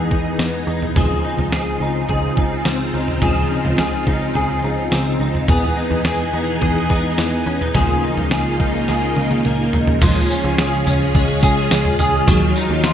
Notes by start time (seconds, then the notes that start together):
Already playing: E3 B3 D#4 G#4
0.11 E2 D#4, kick
0.39 E2 B3, snare
0.67 E2 D#4
0.82 floor tom
0.96 C#2 C#3 F3 C4 F4 G#4, kick, floor tom
1.25 D#4
1.38 C#2, floor tom
1.52 C#2 G#4, snare
1.80 C#2 D#4
2.09 C#2 G#4, kick, floor tom
2.37 C#2 D#4, kick
2.65 C#2 C4, snare
2.94 C#2 D#4
3.08 floor tom
3.22 C#2 F3 G#4, kick, floor tom
3.51 D#4
3.65 C#2, floor tom
3.78 C#2 G#4, snare
4.07 C#2 D#4, kick
4.35 C#2 G#4, floor tom
4.64 C#2 D#4
4.92 C#2 C4, snare
5.20 C#2 D#4
5.35 floor tom
5.48 E2 E3 B3 D#4 G#4, kick, floor tom
5.76 D#4
5.91 E2, floor tom
6.05 E2 G#4, snare
6.33 E2 D#4
6.61 E2 G#4, kick, floor tom
6.90 E2 D#4, kick
7.18 E2 B3, snare
7.46 E2 C#4
7.61 D#4, floor tom
7.75 C#2 C#3 F3 A#3 D#4 F4 G#4, kick, floor tom
8.03 D#4
8.17 C#2, floor tom
8.31 C#2 G#4, snare
8.60 C#2 D#4, kick
8.88 C#2 G#4, snare
9.16 C#2 D#4, high tom
9.31 high tom
9.45 C#2 A#3, mid tom
9.73 C#2 D#4, floor tom
9.87 floor tom
10.02 C#2 C#3 F3 C#4 F4 G#4, kick, floor tom, crash, tambourine
10.30 C#4, tambourine
10.44 C#2
10.58 C#2 G#4, snare, tambourine
10.86 C#2 C#4, floor tom, tambourine
11.15 C#2 G#3, kick, floor tom
11.43 C#2 G#4, kick, tambourine
11.71 C#2 G#3, snare, tambourine
11.85 floor tom
11.99 C#2 G#4, floor tom, tambourine
12.27 D#2 D#3 F#3 D#4, kick, floor tom, tambourine
12.56 D#4, tambourine
12.70 D#2
12.84 D#2 F4, snare, tambourine